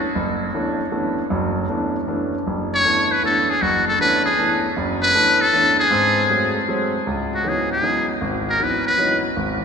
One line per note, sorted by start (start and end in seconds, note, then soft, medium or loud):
0.15 0.48 F#1 medium
0.54 0.80 E3 medium
0.54 0.80 A3 soft
0.54 0.80 B3 soft
0.54 0.80 C#4 soft
0.54 0.80 D4 medium
0.92 1.18 E3 soft
0.92 1.18 A3 soft
0.92 1.18 B3 soft
0.92 1.18 C#4 soft
0.92 1.18 D4 medium
1.30 1.63 F#1 medium
1.30 1.63 F#2 medium
1.69 1.95 E3 soft
1.69 1.95 A3 soft
1.69 1.95 B3 soft
1.69 1.96 C#4 soft
1.69 1.95 D4 medium
2.07 2.33 E3 soft
2.07 2.33 A3 soft
2.07 2.34 B3 soft
2.07 2.34 C#4 soft
2.07 2.34 D4 medium
2.47 2.79 F#1 medium
2.74 3.13 C#5 loud
2.84 3.10 E3 soft
2.84 3.10 A3 soft
2.84 3.10 B3 soft
2.84 3.10 C#4 soft
2.84 3.10 D4 medium
3.11 3.23 B4 medium
3.23 3.49 E3 medium
3.23 3.49 A3 soft
3.23 3.49 B3 soft
3.23 3.49 C#4 soft
3.23 3.49 D4 medium
3.23 3.51 A4 medium
3.50 3.63 G#4 medium
3.62 3.94 F#1 medium
3.62 3.86 F#4 medium
3.88 3.99 A4 medium
4.00 4.26 E3 soft
4.00 4.26 A3 soft
4.00 4.26 B3 soft
4.00 4.26 C#4 soft
4.00 4.26 D4 medium
4.00 4.23 B4 medium
4.26 4.60 G#4 medium
4.38 4.64 E3 medium
4.38 4.64 A3 soft
4.38 4.64 B3 soft
4.38 4.65 C#4 soft
4.38 4.65 D4 medium
4.77 5.09 F#1 medium
4.77 5.09 F#2 medium
5.02 5.43 B4 loud
5.14 5.41 E3 medium
5.14 5.41 A3 soft
5.14 5.41 B3 soft
5.14 5.41 C#4 soft
5.14 5.41 D4 medium
5.41 5.79 A4 loud
5.53 5.79 E3 medium
5.53 5.79 A3 soft
5.53 5.79 B3 soft
5.53 5.79 C#4 soft
5.53 5.79 D4 medium
5.80 6.65 G#4 medium
5.91 6.24 G#2 medium
5.91 6.24 C4 medium
6.30 6.56 F#3 soft
6.30 6.56 G#3 soft
6.30 6.56 A3 soft
6.30 6.56 C4 medium
6.68 6.94 F#3 medium
6.68 6.95 G#3 soft
6.68 6.95 A3 soft
6.68 6.95 C4 medium
7.07 7.40 C#2 medium
7.34 7.50 F#4 medium
7.44 7.71 E3 soft
7.44 7.71 F#3 soft
7.44 7.71 B3 soft
7.44 7.71 C#4 soft
7.44 7.71 D#4 medium
7.49 7.72 G#4 medium
7.72 8.07 G#4 medium
7.83 8.09 E3 soft
7.83 8.09 F#3 soft
7.83 8.10 B3 soft
7.83 8.09 C#4 soft
7.83 8.10 D#4 medium
8.21 8.55 G#1 medium
8.50 8.65 A#4 medium
8.59 8.86 E3 soft
8.59 8.86 F#3 soft
8.59 8.86 B3 soft
8.59 8.87 C#4 soft
8.59 8.87 D#4 medium
8.59 8.86 B4 medium
8.87 9.22 B4 medium
8.98 9.25 E3 soft
8.98 9.25 F#3 soft
8.98 9.25 B3 soft
8.98 9.25 C#4 soft
8.98 9.25 D#4 medium
9.36 9.65 G#1 medium